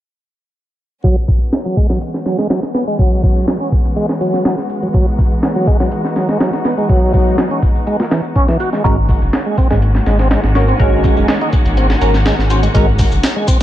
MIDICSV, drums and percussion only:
0, 0, Header, 1, 2, 480
1, 0, Start_track
1, 0, Tempo, 487805
1, 1021, Time_signature, 4, 2, 24, 8
1, 13410, End_track
2, 0, Start_track
2, 0, Title_t, "Drums"
2, 1021, Note_on_c, 9, 82, 29
2, 1022, Note_on_c, 9, 36, 92
2, 1022, Note_on_c, 9, 42, 77
2, 1120, Note_off_c, 9, 36, 0
2, 1120, Note_off_c, 9, 82, 0
2, 1121, Note_off_c, 9, 42, 0
2, 1259, Note_on_c, 9, 82, 71
2, 1261, Note_on_c, 9, 36, 84
2, 1262, Note_on_c, 9, 46, 72
2, 1358, Note_off_c, 9, 82, 0
2, 1360, Note_off_c, 9, 36, 0
2, 1360, Note_off_c, 9, 46, 0
2, 1387, Note_on_c, 9, 82, 39
2, 1485, Note_off_c, 9, 82, 0
2, 1500, Note_on_c, 9, 82, 30
2, 1501, Note_on_c, 9, 38, 106
2, 1501, Note_on_c, 9, 42, 80
2, 1598, Note_off_c, 9, 82, 0
2, 1600, Note_off_c, 9, 38, 0
2, 1600, Note_off_c, 9, 42, 0
2, 1738, Note_on_c, 9, 82, 68
2, 1741, Note_on_c, 9, 36, 87
2, 1742, Note_on_c, 9, 42, 63
2, 1837, Note_off_c, 9, 82, 0
2, 1839, Note_off_c, 9, 36, 0
2, 1840, Note_off_c, 9, 42, 0
2, 1866, Note_on_c, 9, 82, 41
2, 1868, Note_on_c, 9, 38, 45
2, 1964, Note_off_c, 9, 82, 0
2, 1967, Note_off_c, 9, 38, 0
2, 1979, Note_on_c, 9, 82, 28
2, 1982, Note_on_c, 9, 42, 81
2, 2077, Note_off_c, 9, 82, 0
2, 2080, Note_off_c, 9, 42, 0
2, 2108, Note_on_c, 9, 38, 35
2, 2207, Note_off_c, 9, 38, 0
2, 2219, Note_on_c, 9, 82, 72
2, 2222, Note_on_c, 9, 38, 43
2, 2222, Note_on_c, 9, 42, 64
2, 2317, Note_off_c, 9, 82, 0
2, 2320, Note_off_c, 9, 38, 0
2, 2320, Note_off_c, 9, 42, 0
2, 2346, Note_on_c, 9, 82, 41
2, 2348, Note_on_c, 9, 38, 43
2, 2444, Note_off_c, 9, 82, 0
2, 2447, Note_off_c, 9, 38, 0
2, 2460, Note_on_c, 9, 82, 31
2, 2461, Note_on_c, 9, 38, 105
2, 2461, Note_on_c, 9, 42, 83
2, 2558, Note_off_c, 9, 82, 0
2, 2559, Note_off_c, 9, 38, 0
2, 2559, Note_off_c, 9, 42, 0
2, 2587, Note_on_c, 9, 38, 44
2, 2685, Note_off_c, 9, 38, 0
2, 2701, Note_on_c, 9, 38, 52
2, 2701, Note_on_c, 9, 42, 65
2, 2702, Note_on_c, 9, 82, 66
2, 2800, Note_off_c, 9, 38, 0
2, 2800, Note_off_c, 9, 42, 0
2, 2800, Note_off_c, 9, 82, 0
2, 2829, Note_on_c, 9, 82, 38
2, 2927, Note_off_c, 9, 82, 0
2, 2941, Note_on_c, 9, 36, 94
2, 2941, Note_on_c, 9, 42, 74
2, 2943, Note_on_c, 9, 82, 29
2, 3039, Note_off_c, 9, 36, 0
2, 3040, Note_off_c, 9, 42, 0
2, 3041, Note_off_c, 9, 82, 0
2, 3181, Note_on_c, 9, 36, 84
2, 3182, Note_on_c, 9, 42, 62
2, 3182, Note_on_c, 9, 82, 71
2, 3279, Note_off_c, 9, 36, 0
2, 3280, Note_off_c, 9, 82, 0
2, 3281, Note_off_c, 9, 42, 0
2, 3309, Note_on_c, 9, 82, 39
2, 3407, Note_off_c, 9, 82, 0
2, 3421, Note_on_c, 9, 82, 31
2, 3422, Note_on_c, 9, 38, 107
2, 3422, Note_on_c, 9, 42, 83
2, 3520, Note_off_c, 9, 38, 0
2, 3520, Note_off_c, 9, 42, 0
2, 3520, Note_off_c, 9, 82, 0
2, 3547, Note_on_c, 9, 42, 38
2, 3646, Note_off_c, 9, 42, 0
2, 3661, Note_on_c, 9, 36, 88
2, 3661, Note_on_c, 9, 42, 63
2, 3661, Note_on_c, 9, 82, 72
2, 3759, Note_off_c, 9, 36, 0
2, 3759, Note_off_c, 9, 82, 0
2, 3760, Note_off_c, 9, 42, 0
2, 3788, Note_on_c, 9, 42, 38
2, 3788, Note_on_c, 9, 82, 42
2, 3886, Note_off_c, 9, 42, 0
2, 3887, Note_off_c, 9, 82, 0
2, 3901, Note_on_c, 9, 42, 79
2, 3902, Note_on_c, 9, 82, 30
2, 4000, Note_off_c, 9, 42, 0
2, 4000, Note_off_c, 9, 82, 0
2, 4027, Note_on_c, 9, 38, 52
2, 4126, Note_off_c, 9, 38, 0
2, 4141, Note_on_c, 9, 42, 64
2, 4142, Note_on_c, 9, 82, 72
2, 4239, Note_off_c, 9, 42, 0
2, 4240, Note_off_c, 9, 82, 0
2, 4267, Note_on_c, 9, 82, 40
2, 4268, Note_on_c, 9, 38, 34
2, 4366, Note_off_c, 9, 38, 0
2, 4366, Note_off_c, 9, 82, 0
2, 4380, Note_on_c, 9, 38, 108
2, 4380, Note_on_c, 9, 42, 79
2, 4382, Note_on_c, 9, 82, 32
2, 4479, Note_off_c, 9, 38, 0
2, 4479, Note_off_c, 9, 42, 0
2, 4480, Note_off_c, 9, 82, 0
2, 4508, Note_on_c, 9, 38, 35
2, 4606, Note_off_c, 9, 38, 0
2, 4620, Note_on_c, 9, 82, 66
2, 4622, Note_on_c, 9, 42, 62
2, 4719, Note_off_c, 9, 82, 0
2, 4720, Note_off_c, 9, 42, 0
2, 4747, Note_on_c, 9, 82, 39
2, 4748, Note_on_c, 9, 42, 39
2, 4846, Note_off_c, 9, 42, 0
2, 4846, Note_off_c, 9, 82, 0
2, 4860, Note_on_c, 9, 82, 29
2, 4861, Note_on_c, 9, 36, 93
2, 4862, Note_on_c, 9, 42, 76
2, 4959, Note_off_c, 9, 82, 0
2, 4960, Note_off_c, 9, 36, 0
2, 4961, Note_off_c, 9, 42, 0
2, 5102, Note_on_c, 9, 36, 87
2, 5102, Note_on_c, 9, 82, 70
2, 5103, Note_on_c, 9, 46, 75
2, 5200, Note_off_c, 9, 36, 0
2, 5200, Note_off_c, 9, 82, 0
2, 5201, Note_off_c, 9, 46, 0
2, 5226, Note_on_c, 9, 82, 39
2, 5325, Note_off_c, 9, 82, 0
2, 5340, Note_on_c, 9, 82, 31
2, 5342, Note_on_c, 9, 38, 108
2, 5342, Note_on_c, 9, 42, 80
2, 5438, Note_off_c, 9, 82, 0
2, 5441, Note_off_c, 9, 38, 0
2, 5441, Note_off_c, 9, 42, 0
2, 5579, Note_on_c, 9, 82, 68
2, 5582, Note_on_c, 9, 36, 89
2, 5583, Note_on_c, 9, 42, 65
2, 5678, Note_off_c, 9, 82, 0
2, 5680, Note_off_c, 9, 36, 0
2, 5681, Note_off_c, 9, 42, 0
2, 5705, Note_on_c, 9, 82, 42
2, 5709, Note_on_c, 9, 38, 46
2, 5804, Note_off_c, 9, 82, 0
2, 5807, Note_off_c, 9, 38, 0
2, 5819, Note_on_c, 9, 82, 29
2, 5822, Note_on_c, 9, 42, 82
2, 5917, Note_off_c, 9, 82, 0
2, 5920, Note_off_c, 9, 42, 0
2, 5949, Note_on_c, 9, 38, 37
2, 6047, Note_off_c, 9, 38, 0
2, 6060, Note_on_c, 9, 82, 73
2, 6063, Note_on_c, 9, 38, 45
2, 6063, Note_on_c, 9, 42, 64
2, 6158, Note_off_c, 9, 82, 0
2, 6161, Note_off_c, 9, 38, 0
2, 6161, Note_off_c, 9, 42, 0
2, 6187, Note_on_c, 9, 82, 40
2, 6188, Note_on_c, 9, 38, 45
2, 6285, Note_off_c, 9, 82, 0
2, 6286, Note_off_c, 9, 38, 0
2, 6300, Note_on_c, 9, 82, 30
2, 6302, Note_on_c, 9, 38, 107
2, 6302, Note_on_c, 9, 42, 80
2, 6399, Note_off_c, 9, 82, 0
2, 6400, Note_off_c, 9, 38, 0
2, 6400, Note_off_c, 9, 42, 0
2, 6429, Note_on_c, 9, 38, 45
2, 6528, Note_off_c, 9, 38, 0
2, 6540, Note_on_c, 9, 82, 66
2, 6543, Note_on_c, 9, 38, 55
2, 6543, Note_on_c, 9, 42, 63
2, 6638, Note_off_c, 9, 82, 0
2, 6641, Note_off_c, 9, 38, 0
2, 6641, Note_off_c, 9, 42, 0
2, 6666, Note_on_c, 9, 82, 40
2, 6764, Note_off_c, 9, 82, 0
2, 6780, Note_on_c, 9, 82, 29
2, 6782, Note_on_c, 9, 36, 96
2, 6783, Note_on_c, 9, 42, 79
2, 6878, Note_off_c, 9, 82, 0
2, 6881, Note_off_c, 9, 36, 0
2, 6882, Note_off_c, 9, 42, 0
2, 7020, Note_on_c, 9, 82, 67
2, 7022, Note_on_c, 9, 36, 86
2, 7022, Note_on_c, 9, 42, 62
2, 7119, Note_off_c, 9, 82, 0
2, 7121, Note_off_c, 9, 36, 0
2, 7121, Note_off_c, 9, 42, 0
2, 7148, Note_on_c, 9, 82, 37
2, 7246, Note_off_c, 9, 82, 0
2, 7262, Note_on_c, 9, 82, 30
2, 7263, Note_on_c, 9, 38, 107
2, 7263, Note_on_c, 9, 42, 81
2, 7360, Note_off_c, 9, 82, 0
2, 7361, Note_off_c, 9, 38, 0
2, 7361, Note_off_c, 9, 42, 0
2, 7390, Note_on_c, 9, 42, 40
2, 7488, Note_off_c, 9, 42, 0
2, 7501, Note_on_c, 9, 82, 66
2, 7503, Note_on_c, 9, 36, 80
2, 7503, Note_on_c, 9, 46, 68
2, 7599, Note_off_c, 9, 82, 0
2, 7601, Note_off_c, 9, 36, 0
2, 7602, Note_off_c, 9, 46, 0
2, 7628, Note_on_c, 9, 82, 40
2, 7726, Note_off_c, 9, 82, 0
2, 7742, Note_on_c, 9, 82, 29
2, 7744, Note_on_c, 9, 42, 79
2, 7840, Note_off_c, 9, 82, 0
2, 7842, Note_off_c, 9, 42, 0
2, 7870, Note_on_c, 9, 38, 52
2, 7969, Note_off_c, 9, 38, 0
2, 7982, Note_on_c, 9, 82, 67
2, 7984, Note_on_c, 9, 38, 99
2, 7984, Note_on_c, 9, 42, 75
2, 8080, Note_off_c, 9, 82, 0
2, 8082, Note_off_c, 9, 38, 0
2, 8082, Note_off_c, 9, 42, 0
2, 8107, Note_on_c, 9, 82, 38
2, 8206, Note_off_c, 9, 82, 0
2, 8222, Note_on_c, 9, 82, 29
2, 8223, Note_on_c, 9, 36, 77
2, 8223, Note_on_c, 9, 42, 55
2, 8320, Note_off_c, 9, 82, 0
2, 8321, Note_off_c, 9, 36, 0
2, 8321, Note_off_c, 9, 42, 0
2, 8349, Note_on_c, 9, 38, 45
2, 8447, Note_off_c, 9, 38, 0
2, 8462, Note_on_c, 9, 42, 74
2, 8463, Note_on_c, 9, 82, 67
2, 8560, Note_off_c, 9, 42, 0
2, 8561, Note_off_c, 9, 82, 0
2, 8589, Note_on_c, 9, 38, 34
2, 8590, Note_on_c, 9, 82, 36
2, 8687, Note_off_c, 9, 38, 0
2, 8689, Note_off_c, 9, 82, 0
2, 8703, Note_on_c, 9, 36, 94
2, 8703, Note_on_c, 9, 42, 74
2, 8705, Note_on_c, 9, 82, 27
2, 8802, Note_off_c, 9, 36, 0
2, 8802, Note_off_c, 9, 42, 0
2, 8803, Note_off_c, 9, 82, 0
2, 8943, Note_on_c, 9, 36, 88
2, 8943, Note_on_c, 9, 46, 74
2, 8944, Note_on_c, 9, 82, 67
2, 9041, Note_off_c, 9, 36, 0
2, 9041, Note_off_c, 9, 46, 0
2, 9042, Note_off_c, 9, 82, 0
2, 9070, Note_on_c, 9, 82, 35
2, 9168, Note_off_c, 9, 82, 0
2, 9183, Note_on_c, 9, 38, 108
2, 9183, Note_on_c, 9, 42, 82
2, 9183, Note_on_c, 9, 82, 29
2, 9281, Note_off_c, 9, 38, 0
2, 9281, Note_off_c, 9, 42, 0
2, 9281, Note_off_c, 9, 82, 0
2, 9423, Note_on_c, 9, 36, 88
2, 9423, Note_on_c, 9, 82, 66
2, 9424, Note_on_c, 9, 42, 65
2, 9521, Note_off_c, 9, 82, 0
2, 9522, Note_off_c, 9, 36, 0
2, 9522, Note_off_c, 9, 42, 0
2, 9549, Note_on_c, 9, 82, 38
2, 9550, Note_on_c, 9, 38, 45
2, 9647, Note_off_c, 9, 82, 0
2, 9649, Note_off_c, 9, 38, 0
2, 9662, Note_on_c, 9, 82, 27
2, 9664, Note_on_c, 9, 42, 85
2, 9760, Note_off_c, 9, 82, 0
2, 9762, Note_off_c, 9, 42, 0
2, 9790, Note_on_c, 9, 38, 36
2, 9888, Note_off_c, 9, 38, 0
2, 9902, Note_on_c, 9, 82, 66
2, 9904, Note_on_c, 9, 38, 47
2, 9904, Note_on_c, 9, 42, 65
2, 10000, Note_off_c, 9, 82, 0
2, 10002, Note_off_c, 9, 38, 0
2, 10002, Note_off_c, 9, 42, 0
2, 10028, Note_on_c, 9, 82, 38
2, 10031, Note_on_c, 9, 38, 44
2, 10126, Note_off_c, 9, 82, 0
2, 10129, Note_off_c, 9, 38, 0
2, 10142, Note_on_c, 9, 82, 28
2, 10144, Note_on_c, 9, 38, 108
2, 10144, Note_on_c, 9, 42, 80
2, 10240, Note_off_c, 9, 82, 0
2, 10242, Note_off_c, 9, 38, 0
2, 10242, Note_off_c, 9, 42, 0
2, 10270, Note_on_c, 9, 38, 44
2, 10368, Note_off_c, 9, 38, 0
2, 10382, Note_on_c, 9, 82, 64
2, 10383, Note_on_c, 9, 38, 55
2, 10383, Note_on_c, 9, 42, 67
2, 10480, Note_off_c, 9, 82, 0
2, 10482, Note_off_c, 9, 38, 0
2, 10482, Note_off_c, 9, 42, 0
2, 10507, Note_on_c, 9, 82, 36
2, 10606, Note_off_c, 9, 82, 0
2, 10621, Note_on_c, 9, 82, 28
2, 10623, Note_on_c, 9, 36, 98
2, 10624, Note_on_c, 9, 42, 76
2, 10720, Note_off_c, 9, 82, 0
2, 10722, Note_off_c, 9, 36, 0
2, 10722, Note_off_c, 9, 42, 0
2, 10862, Note_on_c, 9, 82, 66
2, 10863, Note_on_c, 9, 36, 85
2, 10863, Note_on_c, 9, 42, 62
2, 10960, Note_off_c, 9, 82, 0
2, 10961, Note_off_c, 9, 36, 0
2, 10962, Note_off_c, 9, 42, 0
2, 10986, Note_on_c, 9, 82, 36
2, 11084, Note_off_c, 9, 82, 0
2, 11101, Note_on_c, 9, 82, 29
2, 11103, Note_on_c, 9, 38, 108
2, 11103, Note_on_c, 9, 42, 85
2, 11200, Note_off_c, 9, 82, 0
2, 11201, Note_off_c, 9, 38, 0
2, 11201, Note_off_c, 9, 42, 0
2, 11230, Note_on_c, 9, 42, 40
2, 11328, Note_off_c, 9, 42, 0
2, 11342, Note_on_c, 9, 82, 63
2, 11344, Note_on_c, 9, 36, 86
2, 11344, Note_on_c, 9, 42, 63
2, 11440, Note_off_c, 9, 82, 0
2, 11442, Note_off_c, 9, 36, 0
2, 11442, Note_off_c, 9, 42, 0
2, 11466, Note_on_c, 9, 82, 37
2, 11470, Note_on_c, 9, 42, 40
2, 11564, Note_off_c, 9, 82, 0
2, 11568, Note_off_c, 9, 42, 0
2, 11581, Note_on_c, 9, 82, 28
2, 11583, Note_on_c, 9, 42, 85
2, 11679, Note_off_c, 9, 82, 0
2, 11682, Note_off_c, 9, 42, 0
2, 11709, Note_on_c, 9, 38, 54
2, 11808, Note_off_c, 9, 38, 0
2, 11820, Note_on_c, 9, 82, 67
2, 11823, Note_on_c, 9, 42, 65
2, 11919, Note_off_c, 9, 82, 0
2, 11922, Note_off_c, 9, 42, 0
2, 11948, Note_on_c, 9, 82, 39
2, 11949, Note_on_c, 9, 38, 35
2, 12047, Note_off_c, 9, 38, 0
2, 12047, Note_off_c, 9, 82, 0
2, 12061, Note_on_c, 9, 38, 110
2, 12061, Note_on_c, 9, 42, 83
2, 12062, Note_on_c, 9, 82, 30
2, 12159, Note_off_c, 9, 38, 0
2, 12159, Note_off_c, 9, 42, 0
2, 12161, Note_off_c, 9, 82, 0
2, 12190, Note_on_c, 9, 38, 36
2, 12288, Note_off_c, 9, 38, 0
2, 12301, Note_on_c, 9, 82, 65
2, 12303, Note_on_c, 9, 42, 62
2, 12400, Note_off_c, 9, 82, 0
2, 12401, Note_off_c, 9, 42, 0
2, 12427, Note_on_c, 9, 82, 36
2, 12429, Note_on_c, 9, 42, 41
2, 12525, Note_off_c, 9, 82, 0
2, 12528, Note_off_c, 9, 42, 0
2, 12541, Note_on_c, 9, 82, 28
2, 12543, Note_on_c, 9, 36, 96
2, 12544, Note_on_c, 9, 42, 77
2, 12639, Note_off_c, 9, 82, 0
2, 12642, Note_off_c, 9, 36, 0
2, 12642, Note_off_c, 9, 42, 0
2, 12780, Note_on_c, 9, 82, 68
2, 12783, Note_on_c, 9, 36, 89
2, 12783, Note_on_c, 9, 46, 75
2, 12878, Note_off_c, 9, 82, 0
2, 12881, Note_off_c, 9, 36, 0
2, 12882, Note_off_c, 9, 46, 0
2, 12906, Note_on_c, 9, 82, 38
2, 13005, Note_off_c, 9, 82, 0
2, 13022, Note_on_c, 9, 82, 30
2, 13023, Note_on_c, 9, 38, 106
2, 13023, Note_on_c, 9, 42, 85
2, 13120, Note_off_c, 9, 82, 0
2, 13121, Note_off_c, 9, 38, 0
2, 13121, Note_off_c, 9, 42, 0
2, 13262, Note_on_c, 9, 82, 68
2, 13263, Note_on_c, 9, 36, 89
2, 13264, Note_on_c, 9, 42, 66
2, 13360, Note_off_c, 9, 82, 0
2, 13362, Note_off_c, 9, 36, 0
2, 13362, Note_off_c, 9, 42, 0
2, 13410, End_track
0, 0, End_of_file